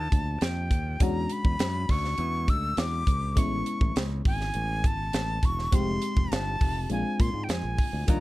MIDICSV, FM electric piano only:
0, 0, Header, 1, 2, 480
1, 0, Start_track
1, 0, Tempo, 589391
1, 821, Time_signature, 4, 2, 24, 8
1, 6679, End_track
2, 0, Start_track
2, 0, Title_t, "FM electric piano"
2, 0, Program_c, 0, 5
2, 0, Control_c, 0, 64, 127
2, 0, Note_on_c, 0, 58, 66
2, 0, Note_on_c, 0, 62, 54
2, 0, Note_on_c, 0, 65, 60
2, 0, Note_on_c, 0, 67, 73
2, 783, Note_off_c, 0, 58, 0
2, 786, Note_off_c, 0, 62, 0
2, 790, Note_off_c, 0, 65, 0
2, 793, Note_off_c, 0, 67, 0
2, 812, Note_on_c, 0, 56, 63
2, 820, Note_on_c, 0, 61, 58
2, 827, Note_on_c, 0, 62, 60
2, 832, Control_c, 0, 64, 0
2, 832, Note_on_c, 0, 66, 74
2, 983, Control_c, 0, 64, 127
2, 2705, Note_off_c, 0, 56, 0
2, 2708, Note_off_c, 0, 61, 0
2, 2712, Note_off_c, 0, 62, 0
2, 2714, Note_off_c, 0, 66, 0
2, 2733, Note_on_c, 0, 56, 65
2, 2738, Note_on_c, 0, 59, 60
2, 2746, Note_on_c, 0, 61, 57
2, 2750, Control_c, 0, 64, 0
2, 2753, Note_on_c, 0, 64, 70
2, 2871, Control_c, 0, 64, 127
2, 4625, Note_off_c, 0, 56, 0
2, 4627, Note_off_c, 0, 59, 0
2, 4631, Note_off_c, 0, 61, 0
2, 4635, Note_off_c, 0, 64, 0
2, 4653, Note_on_c, 0, 56, 66
2, 4658, Note_on_c, 0, 60, 61
2, 4666, Note_on_c, 0, 63, 60
2, 4671, Note_on_c, 0, 67, 67
2, 4672, Control_c, 0, 64, 0
2, 4798, Control_c, 0, 64, 127
2, 5598, Note_off_c, 0, 56, 0
2, 5600, Note_off_c, 0, 60, 0
2, 5605, Note_off_c, 0, 63, 0
2, 5607, Note_off_c, 0, 67, 0
2, 5613, Note_on_c, 0, 56, 64
2, 5621, Note_on_c, 0, 60, 58
2, 5627, Note_on_c, 0, 62, 56
2, 5632, Control_c, 0, 64, 0
2, 5633, Note_on_c, 0, 65, 72
2, 5783, Control_c, 0, 64, 127
2, 6558, Note_off_c, 0, 56, 0
2, 6562, Note_off_c, 0, 60, 0
2, 6565, Note_off_c, 0, 62, 0
2, 6568, Note_off_c, 0, 65, 0
2, 6570, Note_on_c, 0, 55, 68
2, 6575, Note_on_c, 0, 58, 61
2, 6583, Note_on_c, 0, 62, 59
2, 6588, Note_on_c, 0, 65, 69
2, 6591, Control_c, 0, 64, 0
2, 6679, Note_off_c, 0, 55, 0
2, 6679, Note_off_c, 0, 58, 0
2, 6679, Note_off_c, 0, 62, 0
2, 6679, Note_off_c, 0, 65, 0
2, 6679, End_track
0, 0, End_of_file